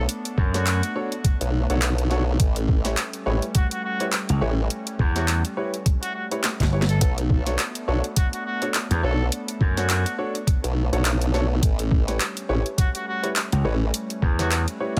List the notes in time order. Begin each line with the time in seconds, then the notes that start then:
Already playing: A3 B3 D4
0.09 closed hi-hat
0.25 closed hi-hat
0.38 F#2, kick
0.54 D4 F#4 A4 C#5, snare, closed hi-hat
0.67 clap, closed hi-hat
0.83 closed hi-hat
0.96 D4 F#4 A4 C#5
1.12 closed hi-hat
1.24 kick, closed hi-hat
1.41 B1, closed hi-hat
1.70 B1 D4 F#4 A4 C#5, closed hi-hat
1.82 clap, closed hi-hat
1.98 closed hi-hat
2.11 D4 F#4 A4 C#5, snare
2.40 A1 G3 C#4, kick, closed hi-hat
2.56 closed hi-hat
2.69 kick
2.85 E4 G4 B4 C#5, snare, closed hi-hat
2.97 clap, closed hi-hat
3.13 closed hi-hat
3.26 A1 E4 G4 B4 C#5
3.42 closed hi-hat
3.55 F#4, kick, closed hi-hat
3.71 F#4, closed hi-hat
3.84 F#4
4.00 E4 G4 B4 C#5, closed hi-hat
4.13 clap, closed hi-hat
4.29 C#2, closed hi-hat
4.41 A1 E4 G4 B4 C#5
4.70 closed hi-hat
4.87 closed hi-hat
4.99 E2, kick
5.16 E4 F#4 G4 B4 C#5, snare, closed hi-hat
5.28 F#4, clap, closed hi-hat
5.45 closed hi-hat
5.57 E4 G4 B4 C#5
5.74 closed hi-hat
5.86 kick, closed hi-hat
6.02 F#4, closed hi-hat
6.15 F#4
6.31 E4 G4 B4 C#5, closed hi-hat
6.44 snare, clap, closed hi-hat
6.60 G1, kick, snare, closed hi-hat
6.73 E4 G4 B4 C#5
6.82 snare
6.89 A4, closed hi-hat
7.01 B1 A3 B3 D4 A4, kick, closed hi-hat
7.18 closed hi-hat
7.30 kick
7.46 D4 F#4 A4 C#5, snare, closed hi-hat
7.59 clap, closed hi-hat
7.75 closed hi-hat
7.88 B1 D4 F#4 A4 C#5
8.04 closed hi-hat
8.16 F#4, kick, closed hi-hat
8.33 F#4, closed hi-hat
8.46 F#4
8.62 D4 F#4 A4 C#5, closed hi-hat
8.74 clap, closed hi-hat
8.91 E2, closed hi-hat
9.03 B1 D4 F#4 A4 C#5
9.32 closed hi-hat
9.48 closed hi-hat
9.61 F#2, kick
9.77 D4 F#4 A4 C#5, snare, closed hi-hat
9.90 clap, closed hi-hat
10.06 closed hi-hat
10.18 D4 F#4 A4 C#5
10.35 closed hi-hat
10.47 kick, closed hi-hat
10.64 B1, closed hi-hat
10.93 B1 D4 F#4 A4 C#5, closed hi-hat
11.05 clap, closed hi-hat
11.22 closed hi-hat
11.34 D4 F#4 A4 C#5, snare
11.63 A1 G3 A3 C#4, kick, closed hi-hat
11.79 closed hi-hat
11.91 kick
12.08 E4 G4 B4 C#5, snare, closed hi-hat
12.20 clap, closed hi-hat
12.37 closed hi-hat
12.49 A1 E4 G4 B4 C#5
12.66 closed hi-hat
12.78 F#4, kick, closed hi-hat
12.95 F#4, closed hi-hat
13.07 F#4
13.23 E4 G4 B4 C#5, closed hi-hat
13.36 clap, closed hi-hat
13.52 C#2, closed hi-hat
13.64 A1 E4 G4 B4 C#5
13.94 closed hi-hat
14.10 closed hi-hat
14.22 E2, kick
14.39 E4 F#4 G4 B4 C#5, snare, closed hi-hat
14.52 F#4, clap, closed hi-hat
14.68 closed hi-hat
14.80 E4 G4 B4 C#5
14.97 A1, closed hi-hat